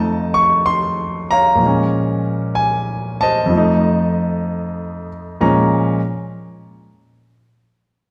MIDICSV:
0, 0, Header, 1, 2, 480
1, 0, Start_track
1, 0, Key_signature, -5, "minor"
1, 0, Tempo, 953440
1, 803, Time_signature, 4, 2, 24, 8
1, 4081, End_track
2, 0, Start_track
2, 0, Title_t, "Grand piano"
2, 0, Program_c, 0, 0
2, 0, Control_c, 0, 64, 127
2, 0, Note_on_c, 0, 41, 56
2, 0, Note_on_c, 0, 53, 49
2, 0, Note_on_c, 0, 57, 51
2, 0, Note_on_c, 0, 63, 59
2, 0, Note_on_c, 0, 75, 65
2, 0, Note_on_c, 0, 81, 93
2, 172, Note_on_c, 0, 85, 97
2, 176, Note_off_c, 0, 81, 0
2, 207, Note_off_c, 0, 85, 0
2, 331, Note_on_c, 0, 84, 97
2, 631, Note_off_c, 0, 84, 0
2, 657, Note_on_c, 0, 82, 101
2, 664, Note_on_c, 0, 73, 59
2, 665, Note_on_c, 0, 77, 60
2, 782, Note_on_c, 0, 46, 53
2, 789, Note_off_c, 0, 75, 0
2, 790, Note_off_c, 0, 53, 0
2, 798, Note_on_c, 0, 53, 48
2, 804, Note_off_c, 0, 41, 0
2, 807, Note_off_c, 0, 57, 0
2, 808, Note_off_c, 0, 63, 0
2, 811, Control_c, 0, 64, 0
2, 818, Note_on_c, 0, 56, 50
2, 837, Note_on_c, 0, 61, 64
2, 907, Control_c, 0, 64, 127
2, 1112, Note_off_c, 0, 82, 0
2, 1285, Note_on_c, 0, 80, 91
2, 1595, Note_off_c, 0, 73, 0
2, 1596, Note_off_c, 0, 77, 0
2, 1615, Note_on_c, 0, 81, 97
2, 1617, Note_off_c, 0, 80, 0
2, 1623, Note_on_c, 0, 75, 70
2, 1626, Note_on_c, 0, 72, 64
2, 1741, Note_on_c, 0, 41, 63
2, 1752, Note_off_c, 0, 46, 0
2, 1753, Note_off_c, 0, 53, 0
2, 1761, Note_on_c, 0, 53, 58
2, 1770, Control_c, 0, 64, 0
2, 1771, Note_off_c, 0, 56, 0
2, 1780, Note_off_c, 0, 61, 0
2, 1782, Note_on_c, 0, 57, 56
2, 1799, Note_on_c, 0, 63, 68
2, 1859, Control_c, 0, 64, 127
2, 2551, Note_off_c, 0, 81, 0
2, 2555, Note_off_c, 0, 75, 0
2, 2556, Note_off_c, 0, 72, 0
2, 2712, Note_off_c, 0, 41, 0
2, 2717, Note_off_c, 0, 53, 0
2, 2721, Note_on_c, 0, 46, 65
2, 2724, Note_on_c, 0, 53, 59
2, 2724, Note_on_c, 0, 82, 76
2, 2726, Note_on_c, 0, 56, 58
2, 2726, Note_on_c, 0, 61, 75
2, 2729, Control_c, 0, 64, 0
2, 2732, Note_off_c, 0, 57, 0
2, 2741, Note_off_c, 0, 63, 0
2, 3013, Note_off_c, 0, 46, 0
2, 3015, Note_off_c, 0, 53, 0
2, 3016, Note_off_c, 0, 56, 0
2, 3016, Note_off_c, 0, 61, 0
2, 3027, Note_off_c, 0, 82, 0
2, 4081, End_track
0, 0, End_of_file